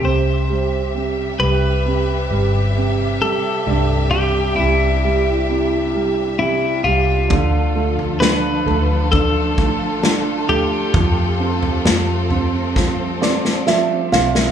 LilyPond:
<<
  \new Staff \with { instrumentName = "Clean electric guitar" } { \time 4/4 \key c \major \tempo 4 = 66 c''4 r8 b'2 a'8~ | a'8 g'8 e'2 e'8 f'8~ | f'4 b'4 a'4. g'8~ | g'2. r4 | }
  \new Staff \with { instrumentName = "String section" } { \time 4/4 \key c \major << { <g g' e''>1~ | <g g' e''>1 | <a f' a'>1~ | <a f' a'>1 | } \\ { c1~ | c1 | <d f>1 | <g c'>1 | } >> }
  \new Staff \with { instrumentName = "Upright piano" } { \clef bass \time 4/4 \key c \major c8 g8 c8 g8 c8 g8 c8 g8 | g,8 g8 c8 g8 c8 g8 c8 g8 | d8 a8 d'8 a8 d'8 a8 d'8 a8 | f8 c'8 f8 c'8 f8 <c' d''>8 <f e''>8 <c' f''>8 | }
  \new Staff \with { instrumentName = "Fingered electric bass" } { \clef bass \time 4/4 \key c \major c,4. c,4 g,,4 r8 | c,4 c,2~ c,8 c,8 | d,4. d,4 a,,4 r8 | f,4 f,2~ f,8 b,,8 | }
  \new DrumStaff \with { instrumentName = "Drums" } \drummode { \time 4/4 r4 r4 r4 r4 | r4 r4 r4 r4 | <bd tomfh>8. tomfh16 sn8 tomfh8 <bd tomfh>8 bd8 sn8 tomfh8 | <bd tomfh>8. tomfh16 sn8 tomfh8 <bd sn>8 sn16 sn16 sn8 sn16 sn16 | }
>>